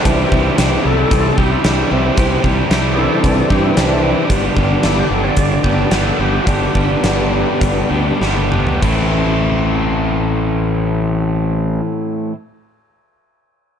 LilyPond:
<<
  \new Staff \with { instrumentName = "Tonewheel organ" } { \time 4/4 \key a \minor \tempo 4 = 107 r4. <gis' a'>4 g'16 e'16 d'8 c'8~ | c'8 r4 <gis' a'>4 g'16 e'16 d'8 d'8~ | d'8 r8 e'16 g'16 a'16 <cis'' d''>4. a'16 g'8 | <fis' g'>8 r2. r8 |
r1 | r1 | }
  \new Staff \with { instrumentName = "Tonewheel organ" } { \time 4/4 \key a \minor <e c' d'>4. r2 r8 | r4. <e c' d'>2~ <e c' d'>8 | <g b d'>4. r4 <g b d'>8 r4 | r8 <g b d'>2 <g b d'>8 r4 |
r1 | r1 | }
  \new Staff \with { instrumentName = "Overdriven electric guitar" } { \time 4/4 \key a \minor <c e g e' g'>8 <g e' g'>8 <c e g e' g'>4. <g e' g'>8 <e g e' g'>8 <g e' g'>8 | <c e g e' g'>8 <g e' g'>8 <c e g e' g'>4. <g e' g'>8 <e g e' g'>8 <g e' g'>8 | <g, d g b d' g'>8 <g b d' g'>8 <g, d g b d' g'>4. <g b d' g'>8 <g b d' g'>8 <g b d' g'>8 | <g, d g b d' g'>8 <g b d' g'>8 <g, d g b d' g'>4. <g b d' g'>8 <g b d' g'>8 <g b d' g'>8 |
<a, e a c' e'>1~ | <a, e a c' e'>1 | }
  \new Staff \with { instrumentName = "Fingered electric bass" } { \clef bass \time 4/4 \key a \minor c,8 c,8 c,8 c,8 c,8 c,8 c,8 c,8 | c,8 c,8 c,4 c,8 g,8 c,4 | g,,8 g,,8 g,,8 g,,8 g,,8 g,,8 g,,8 g,,8 | g,,8 g,,8 g,,4 g,,8 d,8 g,,4 |
a,,1~ | a,,1 | }
  \new DrumStaff \with { instrumentName = "Drums" } \drummode { \time 4/4 <hh bd>8 bd8 <hh sn>4 <hh bd>8 bd8 <hh sn>4 | <hh bd>8 bd8 <hh sn>4 <hh bd>8 bd8 <hh sn>4 | <hh bd>8 bd8 <hh sn>4 <hh bd>8 bd8 <hh sn>4 | <hh bd>8 bd8 <hh sn>4 <hh bd>4 sn16 tommh16 toml16 tomfh16 |
<cymc bd>4 r4 r4 r4 | r4 r4 r4 r4 | }
>>